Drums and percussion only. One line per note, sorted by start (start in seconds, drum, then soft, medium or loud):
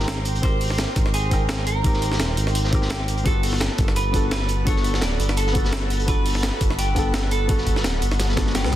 0.08 snare loud
0.08 closed hi-hat loud
0.08 closed hi-hat medium
0.25 closed hi-hat medium
0.35 closed hi-hat soft
0.43 kick loud
0.43 closed hi-hat medium
0.61 closed hi-hat medium
0.61 open hi-hat medium
0.70 snare soft
0.78 snare loud
0.78 closed hi-hat medium
0.96 kick loud
0.96 snare soft
0.96 closed hi-hat medium
1.06 snare soft
1.14 closed hi-hat medium
1.31 kick medium
1.31 closed hi-hat medium
1.49 snare loud
1.49 closed hi-hat medium
1.67 closed hi-hat medium
1.84 kick loud
1.84 closed hi-hat medium
1.94 snare soft
2.02 closed hi-hat medium
2.12 snare medium
2.12 snare soft
2.19 snare loud
2.19 closed hi-hat medium
2.37 closed hi-hat medium
2.47 snare soft
2.47 closed hi-hat soft
2.55 closed hi-hat medium
2.64 snare soft
2.73 kick loud
2.73 closed hi-hat medium
2.82 snare medium
2.90 snare loud
2.90 closed hi-hat medium
3.08 closed hi-hat medium
3.17 closed hi-hat soft
3.26 kick loud
3.26 closed hi-hat medium
3.43 closed hi-hat medium
3.43 open hi-hat medium
3.53 snare soft
3.60 snare loud
3.60 closed hi-hat medium
3.78 kick loud
3.78 snare soft
3.78 closed hi-hat medium
3.88 snare soft
3.96 closed hi-hat medium
4.14 kick medium
4.14 closed hi-hat medium
4.31 snare loud
4.31 closed hi-hat loud
4.31 closed hi-hat medium
4.49 closed hi-hat medium
4.67 kick loud
4.67 closed hi-hat medium
4.76 snare soft
4.84 closed hi-hat medium
4.94 snare medium
4.94 snare soft
5.01 snare loud
5.01 closed hi-hat medium
5.20 closed hi-hat medium
5.29 snare soft
5.29 closed hi-hat medium
5.37 closed hi-hat medium
5.47 snare soft
5.55 kick loud
5.55 closed hi-hat medium
5.65 snare medium
5.72 snare loud
5.72 closed hi-hat medium
5.72 closed hi-hat loud
5.90 closed hi-hat medium
6.00 closed hi-hat soft
6.08 kick loud
6.08 closed hi-hat medium
6.26 closed hi-hat medium
6.26 open hi-hat medium
6.35 snare soft
6.43 snare loud
6.43 closed hi-hat medium
6.61 kick loud
6.61 snare soft
6.61 closed hi-hat medium
6.70 snare soft
6.79 closed hi-hat loud
6.79 closed hi-hat medium
6.96 kick medium
6.96 closed hi-hat medium
7.14 snare loud
7.14 closed hi-hat loud
7.14 closed hi-hat medium
7.31 closed hi-hat medium
7.49 kick loud
7.49 closed hi-hat medium
7.49 closed hi-hat loud
7.58 snare soft
7.66 kick medium
7.66 closed hi-hat medium
7.76 snare medium
7.76 snare soft
7.84 snare loud
7.84 closed hi-hat medium
8.02 closed hi-hat medium
8.11 snare soft
8.11 closed hi-hat soft
8.19 snare loud
8.19 closed hi-hat loud
8.19 closed hi-hat medium
8.29 snare soft
8.37 kick loud
8.37 snare loud
8.37 snare medium
8.37 closed hi-hat medium
8.47 snare medium
8.55 snare medium
8.55 snare loud
8.55 closed hi-hat medium
8.55 closed hi-hat loud
8.64 snare medium
8.72 snare loud
8.72 closed hi-hat medium
8.72 mid tom loud